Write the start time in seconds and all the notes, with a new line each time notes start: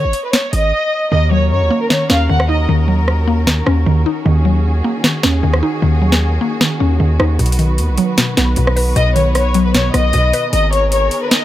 Already playing: C#5
0.04 G#1
0.13 closed hi-hat
0.24 B4
0.33 C#5, snare, closed hi-hat
0.53 G#1 D#5, closed hi-hat
1.12 D#2 D#3 C#4 F#4 A#4 D#5
1.31 F#3 C#5
1.51 F#2 C#5
1.61 D#2
1.71 A#3
1.81 A#4
1.90 D#3 C#5, snare
2.10 D#2 C#4 F5, snare
2.29 D#2 D#3 F#5
2.40 cross-stick
2.49 D#4 D#5
2.69 D#2 D#3
2.88 F#3
3.08 cross-stick
3.28 A#3
3.47 D#3, snare
3.66 D#2 C#4, cross-stick
3.86 D#2 D#3
4.06 D#4
4.25 D#2 D#3 G#4
4.45 F#3
4.84 A#3
5.04 D#3, snare
5.23 D#2 C#4, snare
5.43 D#2 D#3
5.54 cross-stick
5.63 D#4
5.82 D#2 D#3
6.02 F#3
6.12 snare
6.41 A#3
6.61 D#3, snare
6.80 D#2 C#4
7.00 D#2 D#3
7.20 D#2 D#4, cross-stick
7.39 B1 B2 B3 B4, closed hi-hat
7.46 closed hi-hat
7.52 closed hi-hat
7.59 D#3, closed hi-hat
7.78 D#2, closed hi-hat
7.89 B1
7.98 F#3, closed hi-hat
8.18 B2, snare, closed hi-hat
8.37 B1 B3, snare, closed hi-hat
8.56 B1 B2, closed hi-hat
8.67 cross-stick
8.76 B4, open hi-hat
8.96 B1 B2 D#5, closed hi-hat
9.16 D#3 C#5, closed hi-hat
9.35 C#5, cross-stick, closed hi-hat
9.54 F#3, closed hi-hat
9.65 B4
9.74 B2 C#5, snare, closed hi-hat
9.94 B1 B3 D#5, cross-stick, closed hi-hat
10.13 B1 B2, closed hi-hat
10.33 B4, closed hi-hat
10.53 G#1 D#3 G#4 A#4 D#5, closed hi-hat
10.73 C#5, closed hi-hat
10.92 C#5, closed hi-hat
11.11 closed hi-hat
11.22 B4
11.31 D#5, snare, closed hi-hat